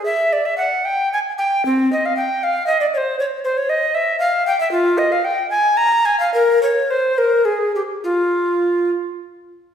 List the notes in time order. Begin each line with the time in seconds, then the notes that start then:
0.05 E5
0.33 D5
0.45 E5
0.58 F#5
0.85 G5
1.13 G#5
1.38 G5
1.65 C4
1.92 D#5
2.06 F5
2.17 G5
2.43 F5
2.67 D#5
2.81 D5
2.94 C5 C#5
3.20 C#5
3.44 C5
3.57 C#5
3.69 D#5
3.95 E5
4.20 F5
4.47 G5
4.60 E5
4.71 F4
4.98 D#5
5.12 F5
5.24 G5
5.50 G#5
5.77 A#5
6.05 G#5
6.20 F5
6.34 A#4
6.63 C#5
6.91 C5
7.18 A#4
7.45 G#4
7.75 G4
8.04 F4